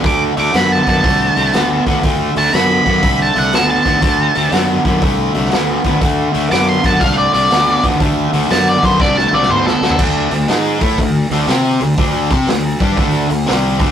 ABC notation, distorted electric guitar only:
X:1
M:4/4
L:1/8
Q:"Swing" 1/4=121
K:Dmix
V:1 name="Distorted electric guitar"
[D,A,] [D,A,] [D,B,] [D,B,] [D,A,] [D,A,] [D,B,] [D,B,] | [D,A,] [D,A,] [D,B,] [D,B,] [D,A,] [D,A,] [D,B,] [D,B,] | [D,A,] [D,A,] [D,B,] [D,B,] [D,A,] [D,A,] [D,B,] [D,B,] | [D,A,] [D,A,] [D,B,] [D,B,] [D,A,] [D,A,] [D,B,] [D,B,] |
[D,A,] [D,A,] [D,B,] [D,B,] [D,A,] [D,A,] [D,B,] [D,B,] | [D,A,D] [D,A,] [^G,_E^G] [A,=EA] [D,A,] [D,A,D] [C=Gc] [D,A,] | [D,A,D] [CGc] [D,A,] [G,DG] [D,A,D] [D,A,] [C,G,C] [D,A,D] |]